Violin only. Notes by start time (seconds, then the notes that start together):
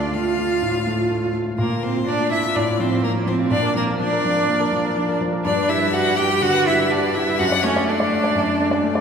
Already playing: D5
0.14 F5
1.58 A#4
1.83 C5
2.08 D5
2.32 E5
2.56 D5
2.80 C5
3.04 A#4
3.27 C5
3.51 D5
3.76 A#4
4.00 D5
5.45 D5
5.69 E5
5.93 F#5
6.17 G5
6.42 F#5
6.66 E5
6.91 D5
7.14 E5
7.39 F#5
7.63 C#5
7.87 D5